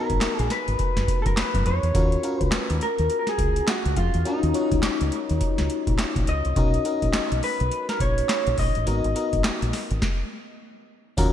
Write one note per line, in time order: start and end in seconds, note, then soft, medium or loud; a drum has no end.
0.00 1.97 B3 medium
0.00 1.97 D#4 medium
0.00 1.95 F#4 medium
0.00 0.40 A#4 medium
0.00 1.95 A#4 medium
0.10 0.19 G#1 medium
0.10 kick medium
0.10 closed hi-hat soft
0.21 snare loud
0.21 clap medium
0.21 closed hi-hat medium
0.39 0.48 A#1 medium
0.39 0.51 G#4 medium
0.39 closed hi-hat medium
0.50 1.22 B4 medium
0.50 snare medium
0.50 closed hi-hat medium
0.68 0.77 G#1 medium
0.68 closed hi-hat soft
0.79 muted fingered electric bass stroke soft
0.79 kick medium
0.79 closed hi-hat medium
0.97 1.05 F#1 medium
0.97 snare medium
0.97 closed hi-hat soft
1.08 kick medium
1.08 closed hi-hat medium
1.22 1.26 A4 medium
1.22 kick loud
1.22 closed hi-hat medium
1.26 1.34 F#1 medium
1.26 1.38 A#4 medium
1.37 1.66 B4 medium
1.37 snare loud
1.37 clap medium
1.37 closed hi-hat medium
1.54 1.63 F#2 medium
1.54 kick loud
1.54 closed hi-hat medium
1.66 1.79 F2 medium
1.66 2.43 C#5 medium
1.66 closed hi-hat medium
1.83 1.92 E2 medium
1.83 closed hi-hat soft
1.94 2.16 D#2 loud
1.94 2.14 C#4 medium
1.94 2.15 F4 medium
1.94 2.15 F#4 medium
1.94 2.15 A#4 medium
1.94 kick loud
1.94 closed hi-hat medium
2.12 closed hi-hat soft
2.23 2.97 C#4 medium
2.23 2.97 F4 medium
2.23 2.97 F#4 medium
2.23 2.97 A#4 medium
2.23 closed hi-hat medium
2.41 2.50 C#2 medium
2.41 2.78 B4 medium
2.41 kick medium
2.41 closed hi-hat soft
2.52 muted fingered electric bass stroke soft
2.52 snare loud
2.52 clap medium
2.52 closed hi-hat medium
2.70 2.79 D#2 medium
2.70 closed hi-hat medium
2.81 3.18 A#4 medium
2.81 closed hi-hat medium
2.98 3.08 D#2 medium
2.98 closed hi-hat soft
3.10 closed hi-hat medium
3.19 3.28 A#4 medium
3.27 3.66 G#4 loud
3.27 snare medium
3.27 closed hi-hat medium
3.38 3.60 C#2 medium
3.38 kick medium
3.38 closed hi-hat medium
3.56 closed hi-hat medium
3.68 3.95 F#4 medium
3.68 snare loud
3.68 clap medium
3.68 closed hi-hat medium
3.86 3.94 C#2 medium
3.86 closed hi-hat medium
3.97 4.10 F2 medium
3.97 4.27 F4 medium
3.97 kick medium
3.97 closed hi-hat medium
4.14 4.23 E2 medium
4.14 closed hi-hat soft
4.25 4.45 C#4 medium
4.25 6.34 D#4 medium
4.25 4.45 F4 medium
4.25 4.46 F#4 medium
4.25 4.46 A#4 medium
4.25 closed hi-hat medium
4.43 4.52 D#2 medium
4.43 closed hi-hat soft
4.54 5.27 C#4 medium
4.54 5.27 F4 medium
4.54 5.28 F#4 medium
4.54 5.28 C#5 medium
4.54 closed hi-hat medium
4.72 4.80 C#2 medium
4.72 kick medium
4.72 closed hi-hat soft
4.83 snare loud
4.83 clap loud
4.83 closed hi-hat medium
5.01 5.10 C#2 medium
5.01 closed hi-hat medium
5.12 closed hi-hat medium
5.29 5.39 D#2 loud
5.29 closed hi-hat soft
5.41 kick medium
5.41 closed hi-hat medium
5.58 5.68 C#2 medium
5.58 snare medium
5.58 closed hi-hat soft
5.70 closed hi-hat medium
5.87 5.96 A#1 medium
5.87 kick loud
5.87 closed hi-hat medium
5.99 snare loud
5.99 clap medium
5.99 closed hi-hat medium
6.16 6.25 A#1 medium
6.16 kick loud
6.16 closed hi-hat medium
6.27 6.41 C#2 medium
6.27 7.44 D#5 loud
6.27 closed hi-hat medium
6.45 6.54 C2 medium
6.45 closed hi-hat soft
6.56 6.78 B1 loud
6.56 6.76 C#4 medium
6.56 6.76 D#4 medium
6.56 6.77 F#4 medium
6.56 6.77 A#4 medium
6.56 kick loud
6.56 closed hi-hat medium
6.74 closed hi-hat soft
6.85 7.58 C#4 medium
6.85 7.58 D#4 medium
6.85 7.58 F#4 medium
6.85 7.59 A#4 medium
6.85 closed hi-hat medium
7.02 7.11 A#1 medium
7.02 kick medium
7.02 closed hi-hat soft
7.13 snare loud
7.13 clap medium
7.13 closed hi-hat medium
7.32 7.40 B1 medium
7.32 closed hi-hat medium
7.43 7.89 B4 loud
7.43 open hi-hat medium
7.60 7.69 B1 loud
7.60 closed hi-hat soft
7.72 closed hi-hat medium
7.89 8.00 A#4 loud
7.89 snare medium
7.89 closed hi-hat medium
8.00 8.22 A#1 medium
8.00 8.55 C#5 loud
8.00 kick medium
8.00 closed hi-hat medium
8.18 closed hi-hat medium
8.29 snare loud
8.29 clap medium
8.29 closed hi-hat medium
8.47 8.56 A#1 medium
8.47 closed hi-hat medium
8.58 8.71 A#1 medium
8.58 9.41 D#5 medium
8.58 kick medium
8.58 open hi-hat medium
8.75 8.85 A1 medium
8.75 closed hi-hat soft
8.86 9.00 G#1 loud
8.86 9.07 B3 medium
8.86 9.07 D#4 medium
8.86 9.07 F#4 medium
8.86 9.07 A#4 medium
8.86 closed hi-hat medium
9.04 9.13 G#1 medium
9.04 closed hi-hat soft
9.15 9.89 B3 medium
9.15 9.89 D#4 medium
9.15 9.89 F#4 medium
9.15 9.89 A#4 medium
9.15 closed hi-hat medium
9.33 9.42 G#1 medium
9.33 kick medium
9.33 closed hi-hat soft
9.44 snare loud
9.44 clap medium
9.44 closed hi-hat medium
9.62 9.71 A#1 medium
9.62 closed hi-hat medium
9.73 snare medium
9.73 open hi-hat medium
9.91 10.00 G#1 medium
9.91 closed hi-hat soft
10.02 kick loud
10.02 snare medium
11.17 11.33 D#2 loud
11.17 11.33 C#4 medium
11.17 11.33 F4 medium
11.17 11.33 F#4 medium
11.17 11.33 A#4 loud
11.17 kick loud
11.17 closed hi-hat medium
11.17 tambourine medium